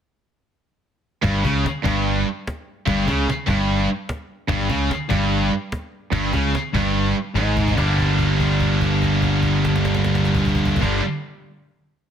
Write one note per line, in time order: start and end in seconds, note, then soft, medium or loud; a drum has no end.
1.23 1.43 G1 loud
1.23 1.43 G2 loud
1.23 cajon bass loud
1.42 1.63 C#2 medium
1.42 1.63 C#3 loud
1.42 cajon bass loud
1.64 muted distorted electric guitar stroke medium
1.64 muted overdriven electric guitar stroke medium
1.64 muted picked electric bass stroke soft
1.64 cajon slap loud
1.85 2.23 G1 loud
1.85 2.25 G2 loud
1.85 cajon bass loud
2.47 cajon slap loud
2.86 3.06 G1 loud
2.86 3.06 G2 loud
2.86 cajon bass loud
3.07 3.26 C#2 medium
3.07 3.26 C#3 loud
3.07 cajon bass loud
3.27 muted distorted electric guitar stroke medium
3.27 muted picked electric bass stroke soft
3.27 muted overdriven electric guitar stroke medium
3.27 cajon slap loud
3.47 3.86 G1 medium
3.47 3.87 G2 loud
3.47 cajon bass loud
4.09 cajon slap loud
4.49 4.68 G1 loud
4.49 4.69 G2 loud
4.49 cajon bass loud
4.69 4.89 C#2 loud
4.69 4.89 C#3 loud
4.69 cajon bass loud
4.90 muted overdriven electric guitar stroke medium
4.90 muted picked electric bass stroke soft
4.90 muted distorted electric guitar stroke medium
4.90 cajon slap loud
5.09 5.49 G1 loud
5.09 5.50 G2 loud
5.09 cajon bass loud
5.72 cajon slap loud
6.13 6.32 G1 loud
6.13 6.33 G2 loud
6.13 cajon bass loud
6.33 6.53 C#2 loud
6.33 6.53 C#3 loud
6.33 cajon bass loud
6.33 cajon slap soft
6.53 muted distorted electric guitar stroke medium
6.53 muted picked electric bass stroke soft
6.53 muted overdriven electric guitar stroke medium
6.53 cajon slap loud
6.74 7.12 G1 loud
6.74 7.15 G2 loud
6.74 cajon bass loud
7.35 7.74 G#1 medium
7.35 7.76 G#2 loud
7.35 cajon slap medium
7.57 cajon bass medium
7.68 cajon bass medium
7.76 10.73 G1 loud
7.76 10.81 G2 medium
7.76 10.82 D3 medium
7.76 10.82 G3 loud
7.76 10.83 A#3 loud
7.76 10.84 D4 loud
7.76 cajon bass medium
7.98 cajon bass medium
8.19 cajon bass medium
8.40 cajon bass medium
8.60 cajon bass medium
8.81 cajon bass medium
9.02 cajon bass medium
9.22 cajon bass medium
9.43 cajon bass medium
9.65 cajon slap loud
9.76 cajon slap medium
9.85 cajon slap loud
9.95 cajon slap medium
10.04 cajon slap loud
10.15 cajon slap medium
10.25 cajon slap medium
10.35 cajon bass loud
10.45 cajon bass loud
10.55 cajon bass loud
10.65 cajon bass loud
10.76 cajon bass loud
10.81 10.99 G1 medium
10.81 11.00 G2 medium
10.81 11.01 D3 medium
10.81 11.01 G3 loud
10.81 11.01 A#3 medium
10.81 11.02 D4 medium
10.81 cajon bass loud
10.81 cajon slap loud